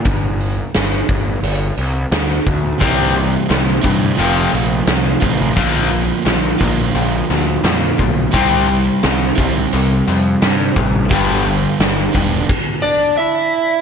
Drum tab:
CC |--------|--------|--------|--------|
HH |xxxxxxxx|xxxxxxxx|xxxxxxxx|xxxxxxxx|
SD |--o---o-|--o---o-|--o--oo-|--o---o-|
BD |o--o---o|o--o---o|o--o---o|o--o---o|

CC |----x---|
HH |xxxx----|
SD |--o-----|
BD |o--oo---|